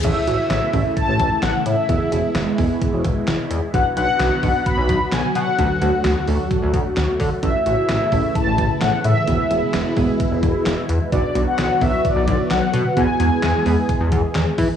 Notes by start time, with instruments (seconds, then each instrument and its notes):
0.04 analog synth bass A1, analog synth pad C#3 E3 A3 E4, synth keys C#4 E4 A4, analog polysynth E5, kick, closed hi-hat, crash
0.27 analog synth bass A1, synth keys C#4 E4 F#4, analog polysynth E5, closed hi-hat
0.50 analog synth bass A1, snare, clap, closed hi-hat
0.73 analog synth bass A1, synth keys C#4 E4 A4, kick, open hi-hat
0.96 analog polysynth A5, kick, closed hi-hat
1.08 analog synth bass A1
1.20 analog synth bass A1, kick, closed hi-hat
1.42 analog synth bass A1, analog polysynth F#5, snare, clap, closed hi-hat
1.65 analog synth bass A2, analog polysynth E5, closed hi-hat
1.89 analog synth bass E1, analog synth pad B2 G#3, synth keys B3 E4 G#4, kick, closed hi-hat
2.12 analog synth bass E1, synth keys B3 E4 G#4, closed hi-hat
2.35 analog synth bass E1, snare, clap, closed hi-hat
2.58 analog synth bass E1, synth keys B3 E4 G#4, kick, open hi-hat
2.81 kick, closed hi-hat
2.93 analog synth bass E1
3.04 analog synth bass E1, kick, closed hi-hat
3.27 analog synth bass E1, snare, clap, closed hi-hat
3.51 analog synth bass E2, closed hi-hat
3.74 analog synth bass B1, analog synth pad D3 F#3 B3 F#4, synth keys D4 F#4 B4, analog polysynth F#5, kick, closed hi-hat
3.97 analog synth bass B1, synth keys D4 F#4 B4, analog polysynth F#5, closed hi-hat
4.20 analog synth bass B1, snare, clap, closed hi-hat
4.43 analog synth bass B1, synth keys D4 F#4 B4, kick, open hi-hat
4.66 analog polysynth B5, kick, closed hi-hat
4.78 analog synth bass B1
4.89 analog synth bass B1, kick, closed hi-hat
5.12 analog synth bass B1, analog polysynth G#5, snare, clap, closed hi-hat
5.35 analog synth bass B2, analog polysynth F#5, closed hi-hat
5.58 analog synth bass D2, analog synth pad A3, synth keys D4 F#4 A4, kick, closed hi-hat
5.81 analog synth bass D2, synth keys D4 F#4 A4, closed hi-hat
6.04 analog synth bass D2, snare, clap, closed hi-hat
6.27 analog synth bass D2, synth keys D4 F#4 A4, open hi-hat
6.51 kick, closed hi-hat
6.62 analog synth bass D2
6.74 analog synth bass D2, kick, closed hi-hat
6.97 analog synth bass D2, snare, clap, closed hi-hat
7.20 analog synth bass D3, kick, open hi-hat
7.43 analog synth bass A1, analog synth pad C#3 E3 E4, synth keys C#4 E4 A4, analog polysynth E5, kick, closed hi-hat
7.66 analog synth bass A1, synth keys C#4 E4 F#4, analog polysynth E5, closed hi-hat
7.89 analog synth bass A1, snare, clap, closed hi-hat
8.12 analog synth bass A1, synth keys C#4 E4 A4, kick, open hi-hat
8.35 analog polysynth A5, kick, closed hi-hat
8.47 analog synth bass A1
8.58 analog synth bass A1, kick, closed hi-hat
8.81 analog synth bass A1, analog polysynth F#5, snare, clap, closed hi-hat
9.05 analog synth bass A2, analog polysynth E5, closed hi-hat
9.28 analog synth bass E1, analog synth pad B2 G#3 E4, synth keys B3 E4 G#4, kick, closed hi-hat
9.51 analog synth bass E1, synth keys B3 E4 G#4, closed hi-hat
9.74 analog synth bass E1, snare, clap, closed hi-hat
9.97 analog synth bass E1, synth keys B3 E4 G#4, kick, open hi-hat
10.20 kick, closed hi-hat
10.32 analog synth bass E1
10.43 analog synth bass E1, kick, closed hi-hat
10.66 analog synth bass E1, snare, clap, closed hi-hat
10.89 analog synth bass E2, closed hi-hat
11.12 analog synth bass B1, analog synth pad D3 F#3 B3 F#4, synth keys B3 D4 F#4, analog polysynth D5, kick, closed hi-hat
11.35 analog synth bass B1, synth keys B3 D4 F#4, analog polysynth D5, closed hi-hat
11.47 analog polysynth F#5
11.58 analog synth bass B1, snare, clap, closed hi-hat
11.81 analog synth bass B1, synth keys B3 D4 E4, analog polysynth E5, kick, open hi-hat
12.05 analog polysynth D5, kick, closed hi-hat
12.16 analog synth bass B1
12.28 analog synth bass B1, kick, closed hi-hat
12.50 analog synth bass B1, analog polysynth F#5, snare, clap, closed hi-hat
12.74 analog synth bass B2, closed hi-hat
12.97 analog synth bass E2, analog synth pad E3 G#3 G#4, synth keys B3 E4 G#4, analog polysynth G#5, kick, closed hi-hat
13.20 analog synth bass E2, synth keys B3 E4 G#4, closed hi-hat
13.43 analog synth bass E2, snare, clap, closed hi-hat
13.66 analog synth bass E2, synth keys B3 E4 G#4, open hi-hat
13.89 kick, closed hi-hat
14.01 analog synth bass E2
14.12 analog synth bass E2, kick, closed hi-hat
14.35 analog synth bass E2, snare, clap, closed hi-hat
14.58 analog synth bass E3, kick, open hi-hat